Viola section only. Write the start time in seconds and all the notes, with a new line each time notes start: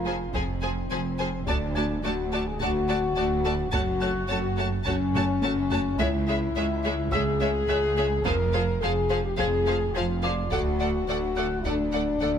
0.06 F3 G#4
0.34 F3 G#4
0.63 F3 G#4
0.91 F3 G#4
1.20 F3 G#4
1.48 A3 F#4
1.76 A3 F#4
2.04 A3 F#4
2.33 A3 F#4
2.61 A3 F#4
2.89 A3 F#4
3.17 A3 F#4
3.45 A3 F#4
3.73 A3 F#4
4.02 A3 F#4
4.31 A3 F#4
4.57 A3 F#4
4.86 A3 F#4
5.14 A3 F#4
5.43 A3 F#4
5.71 A3 F#4
5.99 G#3 G#4
6.28 G#3 G#4
6.57 G#3 G#4
6.85 G#3 G#4
7.14 G#3 G#4
7.41 G#3 G#4
7.69 G#3 G#4
7.97 G#3 G#4
8.25 F3 G#4
8.54 F3 G#4
8.82 F3 G#4
9.10 F3 G#4
9.38 F3 G#4
9.66 F3 G#4
9.94 F3 G#4
10.23 F3 G#4
10.52 A3 A4
10.81 A3 A4
11.09 A3 A4
11.37 A3 A4
11.66 A3 A4
11.94 A3 A4
12.22 A3 A4